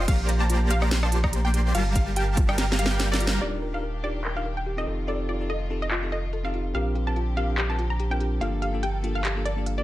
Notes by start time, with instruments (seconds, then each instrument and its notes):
0.08 sub bass A#1, supersaw synth A#3 G4 D5 A#5, synth arpeggio sound G4, synth pluck F5, kick, closed hi-hat, crash
0.29 synth arpeggio sound G4, closed hi-hat
0.40 synth pluck A5
0.50 synth arpeggio sound F4, closed hi-hat
0.70 synth arpeggio sound G4, synth pluck F5, closed hi-hat
0.82 cross-stick
0.91 supersaw synth A#3 G4 C5 D5 C6, synth arpeggio sound G4, snare, closed hi-hat, crash
1.03 synth pluck A5, cross-stick
1.12 synth arpeggio sound F4, closed hi-hat
1.24 synth pluck A#5, kick, cross-stick
1.33 synth arpeggio sound G4, closed hi-hat
1.45 synth pluck G5
1.54 synth arpeggio sound G4, closed hi-hat
1.75 sub bass G1, supersaw synth G3 G4 A#4 F5 A5, synth arpeggio sound F4, synth pluck F5, closed hi-hat, crash
1.96 synth arpeggio sound G4, synth pluck F5, kick, closed hi-hat
2.16 synth arpeggio sound G4, synth pluck G5, closed hi-hat
2.37 synth arpeggio sound F4, kick, closed hi-hat
2.49 synth pluck G5, cross-stick
2.58 supersaw synth G3 G4 A#4 F5 A#5, synth arpeggio sound G4, snare, closed hi-hat, crash
2.72 snare
2.79 synth arpeggio sound G4, synth pluck F5, closed hi-hat
2.86 snare
2.91 supersaw synth G3 G4 A#4 F5 G5
3.00 synth arpeggio sound D5, snare, closed hi-hat
3.11 supersaw synth G3 G4 A#4 F5 A#5, synth pluck D5, snare
3.20 synth arpeggio sound F4, closed hi-hat
3.27 snare
3.40 sub bass D#1, string section D#3 D4 G4, tine electric piano D4 D#4 F4 G4 A#4, synth arpeggio sound G4, synth pluck D5, closed hi-hat, crash
3.62 synth arpeggio sound A#4, closed hi-hat
3.73 tine electric piano D4 D#4 F4 G4 A#4, synth pluck F5
3.83 synth arpeggio sound A#4, closed hi-hat
4.03 tine electric piano D4 D#4 F4 G4 A#4, synth arpeggio sound G4, synth pluck D5, closed hi-hat
4.25 synth arpeggio sound A#4, clap, closed hi-hat
4.35 tine electric piano D4 D#4 F4 G4 A#4, synth pluck F5
4.45 synth arpeggio sound A#4, closed hi-hat
4.57 synth pluck G5
4.66 synth arpeggio sound G4, closed hi-hat
4.77 tine electric piano C4 D#4 F4 G4 A4, synth pluck D#5
4.87 sub bass F1, string section A3 F4, synth arpeggio sound A4, closed hi-hat
5.07 tine electric piano C4 D#4 F4 G4 A4, synth arpeggio sound A4, synth pluck D5, closed hi-hat
5.29 synth arpeggio sound F4, synth pluck D5, closed hi-hat
5.39 tine electric piano C4 D#4 F4 G4 A4
5.50 synth arpeggio sound A4, synth pluck D#5, closed hi-hat
5.69 tine electric piano C4 D#4 F4 G4 A4, synth arpeggio sound A4, closed hi-hat
5.82 synth pluck D#5
5.91 synth arpeggio sound F4, clap, closed hi-hat
6.02 tine electric piano C4 D#4 F4 G4 A4
6.12 synth arpeggio sound A4, synth pluck D#5, closed hi-hat
6.33 synth arpeggio sound A4, closed hi-hat
6.44 tine electric piano C4 D#4 F4 G4 A4, synth pluck F5
6.54 synth arpeggio sound F4, closed hi-hat
6.74 sub bass A#1, string section D3 C4 G4, tine electric piano C4 D4 F4 G4 A#4, synth arpeggio sound G4, synth pluck F5, closed hi-hat
6.95 synth arpeggio sound G4, closed hi-hat
7.06 tine electric piano C4 D4 F4 G4 A#4, synth pluck A5
7.16 synth arpeggio sound F4, closed hi-hat
7.36 tine electric piano C4 D4 F4 G4 A#4, synth arpeggio sound G4, synth pluck F5, closed hi-hat
7.58 synth arpeggio sound G4, clap, closed hi-hat
7.69 tine electric piano C4 D4 F4 G4 A#4, synth pluck A5
7.79 synth arpeggio sound F4, closed hi-hat
7.90 synth pluck A#5
8.00 synth arpeggio sound G4, closed hi-hat
8.10 tine electric piano C4 D4 F4 G4 A#4, synth pluck G5
8.20 synth arpeggio sound G4, closed hi-hat
8.40 sub bass G1, string section F3 A#3 A4, tine electric piano A#3 D4 F4 G4 A4, synth arpeggio sound F4, synth pluck F5, closed hi-hat
8.62 synth arpeggio sound G4, synth pluck F5, closed hi-hat
8.73 tine electric piano A#3 D4 F4 G4 A4
8.83 synth arpeggio sound G4, synth pluck G5, closed hi-hat
9.03 tine electric piano A#3 D4 F4 G4 A4, synth arpeggio sound F4, closed hi-hat
9.15 synth pluck F5
9.25 synth arpeggio sound G4, clap, closed hi-hat
9.35 tine electric piano A#3 D4 F4 G4 A4
9.45 synth arpeggio sound A#4, synth pluck D5, closed hi-hat
9.56 tine electric piano A#3 D4 F4 G4 A4
9.66 synth arpeggio sound F5, closed hi-hat
9.77 tine electric piano A#3 D4 F4 G4 A#4, synth pluck D5